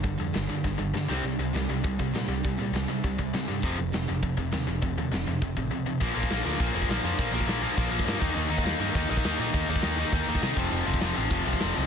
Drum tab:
CC |----------------|----------------|----------------|----------------|
HH |o-o-o-o---------|o-o-o-o-o-o-o-o-|o-o-o-o-o-o-o-o-|o-o-o-o-o-o-o-o-|
SD |----o---o---o-o-|----o-------o---|----o-------o---|----o-------o---|
BD |o-------o-------|--------o-o-----|o-------o-o-----|o-------o-o-----|

CC |----------------|x-x-x-x-x-x-x-x-|x-x-x-x-x-x-x-x-|x-x-x-x-x-x-x-x-|
HH |o-o-o-o-o-o-----|----------------|----------------|----------------|
SD |----o-----------|----o-------o---|----o-------o---|----o-------o---|
BD |o-------o-o-----|o--o----o--o----|o--o----o--o--o-|---o----o--o----|

CC |x-x-x-x-x-x-x-x-|x-x-x-x-x-x-x-x-|
HH |----------------|----------------|
SD |----o-------o---|----o-------o---|
BD |o--o----o--o--o-|---o----o--o----|